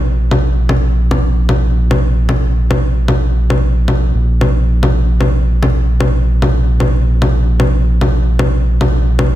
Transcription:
Already playing: analog synth bass A#1
0.31 low conga
0.69 low conga
1.11 low conga
1.49 low conga
1.91 low conga
2.29 low conga
2.71 low conga
3.08 low conga
3.50 low conga
3.88 low conga
4.14 analog synth bass A#1
4.41 low conga
4.83 low conga
5.20 low conga
5.63 low conga
6.00 low conga
6.42 low conga
6.80 low conga
7.22 low conga
7.60 low conga
8.01 low conga
8.39 low conga
8.81 low conga
9.19 low conga

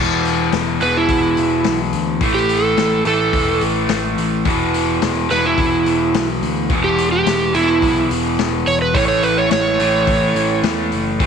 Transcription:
Already playing: picked electric bass E1, overdriven electric guitar E2 B2 E3
0.25 open hi-hat
0.52 picked electric bass E1, snare, open hi-hat
0.80 picked electric bass E1, overdriven electric guitar E2 B2 E3, electric slide guitar B4, open hi-hat
0.97 electric slide guitar E4
1.09 picked electric bass E1, kick, open hi-hat
1.37 picked electric bass E1, open hi-hat
1.64 picked electric bass B1, snare, open hi-hat
1.93 picked electric bass D2, open hi-hat
2.21 picked electric bass A1, overdriven electric guitar A2 E3 A3, kick, open hi-hat
2.34 electric slide guitar G4
2.49 open hi-hat
2.63 electric slide guitar A4
2.77 picked electric bass A1, snare, open hi-hat
3.05 picked electric bass A1, overdriven electric guitar A2 E3 A3, electric slide guitar A4, open hi-hat
3.33 picked electric bass E1, kick, open hi-hat
3.61 picked electric bass A1, open hi-hat
3.88 picked electric bass A1, snare, open hi-hat
4.18 picked electric bass A1, open hi-hat
4.45 picked electric bass E1, overdriven electric guitar E2 B2 E3, kick, open hi-hat
4.74 open hi-hat
5.02 picked electric bass E1, snare, open hi-hat
5.29 picked electric bass E1, overdriven electric guitar E2 B2 E3, electric slide guitar B4, snare, open hi-hat
5.46 electric slide guitar E4
5.58 picked electric bass E1, kick, open hi-hat
5.86 picked electric bass E1, open hi-hat
6.14 picked electric bass B1, snare, open hi-hat
6.42 picked electric bass D2, open hi-hat
6.70 picked electric bass E1, overdriven electric guitar E2 B2 E3, kick, open hi-hat
6.84 electric slide guitar G4
6.98 open hi-hat
7.12 electric slide guitar G4
7.26 picked electric bass E1, snare, open hi-hat
7.53 picked electric bass E1, overdriven electric guitar E2 B2 E3, electric slide guitar E4, open hi-hat
7.82 picked electric bass B1, kick, open hi-hat
8.11 picked electric bass E1, open hi-hat
8.39 picked electric bass E1, snare, open hi-hat
8.66 picked electric bass E1, electric slide guitar C#5, open hi-hat
8.82 electric slide guitar B4
8.94 picked electric bass A1, overdriven electric guitar A2 E3 A3, electric slide guitar C#5, kick, open hi-hat
9.08 electric slide guitar C#5
9.23 electric slide guitar B4, open hi-hat
9.38 electric slide guitar C#5
9.51 picked electric bass A1, electric slide guitar C#5, snare, open hi-hat
9.79 picked electric bass A1, overdriven electric guitar A2 E3 A3, open hi-hat
10.07 picked electric bass A1, kick, open hi-hat
10.35 picked electric bass A1, open hi-hat
10.63 picked electric bass E2, snare, open hi-hat
10.92 picked electric bass F#1, open hi-hat
11.20 picked electric bass A1, overdriven electric guitar A2 E3 A3, kick, open hi-hat

